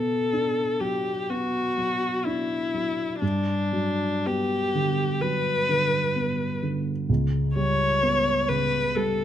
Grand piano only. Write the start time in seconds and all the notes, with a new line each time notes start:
Already playing: B2 B3
0.33 D4
0.81 F#3
1.30 B3
1.78 F#3
2.26 D4
2.74 F#3
3.22 G2
3.73 F#3
4.26 B3
4.75 D3
5.22 F#3
5.69 D3
6.16 B3
6.63 D3
7.09 C#2
7.56 G3
8.03 B3
8.49 C#3
8.96 G3